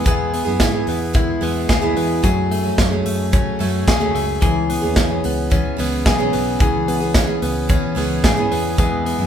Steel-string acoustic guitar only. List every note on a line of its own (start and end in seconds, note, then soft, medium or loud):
0.04 0.46 G#3 medium
0.04 0.47 B3 medium
0.04 0.45 E4 medium
0.04 0.44 G#4 medium
0.45 0.74 B3 soft
0.45 0.73 E4 soft
0.45 0.71 G#4 medium
0.72 1.13 B3 soft
0.72 1.14 E4 soft
0.72 1.14 G#4 medium
1.13 1.40 G#3 medium
1.13 1.41 B3 medium
1.13 1.41 E4 medium
1.13 1.42 G#4 medium
1.41 1.82 G#3 medium
1.41 1.81 B3 medium
1.41 1.81 E4 medium
1.41 1.80 G#4 medium
1.81 2.24 E3 medium
1.81 2.22 G#3 medium
1.81 2.23 B3 medium
1.81 2.23 E4 medium
1.81 2.23 G#4 medium
2.22 2.64 F#3 medium
2.22 2.64 A3 medium
2.22 2.63 C#4 medium
2.22 2.62 G#4 medium
2.63 2.92 F#3 soft
2.63 2.91 A3 soft
2.63 2.90 C#4 medium
2.63 2.89 G#4 soft
2.90 3.31 F#3 soft
2.90 3.32 A3 medium
2.90 3.33 C#4 soft
2.90 3.32 G#4 medium
3.32 3.58 F#3 medium
3.32 3.59 A3 medium
3.32 3.60 C#4 medium
3.32 3.61 G#4 medium
3.59 4.00 F#3 medium
3.59 4.00 A3 medium
3.59 4.00 C#4 medium
3.59 3.99 G#4 medium
4.00 4.43 F#2 medium
4.00 4.42 C#3 medium
4.00 4.40 F#3 medium
4.00 4.42 A3 medium
4.00 4.42 C#4 medium
4.00 4.41 G#4 medium
4.41 4.82 E3 medium
4.41 4.83 B3 medium
4.41 4.82 C#4 medium
4.41 4.81 G#4 medium
4.82 5.11 B3 soft
4.82 5.09 C#4 soft
4.82 5.07 G#4 medium
5.09 5.50 B3 soft
5.09 5.51 C#4 soft
5.09 5.50 G#4 medium
5.50 5.75 E3 medium
5.50 5.77 B3 medium
5.50 5.78 C#4 medium
5.50 5.79 G#4 medium
5.77 6.18 E3 medium
5.77 6.19 B3 medium
5.77 6.18 C#4 medium
5.77 6.17 G#4 medium
6.18 6.61 C#3 medium
6.18 6.58 E3 medium
6.18 6.59 B3 medium
6.18 6.60 C#4 medium
6.18 6.60 G#4 medium
6.59 7.00 E3 medium
6.59 7.01 B3 medium
6.59 7.01 C#4 medium
6.59 6.99 G#4 medium
7.00 7.29 B3 soft
7.00 7.28 C#4 soft
7.00 7.26 G#4 medium
7.27 7.68 B3 soft
7.27 7.69 C#4 soft
7.27 7.69 G#4 medium
7.68 7.94 E3 medium
7.68 7.95 B3 medium
7.68 7.96 C#4 medium
7.68 7.97 G#4 medium
7.95 8.36 E3 medium
7.95 8.36 B3 medium
7.95 8.36 C#4 medium
7.95 8.35 G#4 medium
8.36 8.77 C#3 medium
8.36 8.76 E3 medium
8.36 8.78 B3 medium
8.36 8.78 C#4 medium
8.36 8.77 G#4 medium
8.77 9.18 E3 medium
8.77 9.19 G#3 medium
8.77 9.19 B3 medium
8.77 9.17 E4 medium
9.18 9.27 G#3 soft
9.18 9.27 B3 soft
9.18 9.27 E4 medium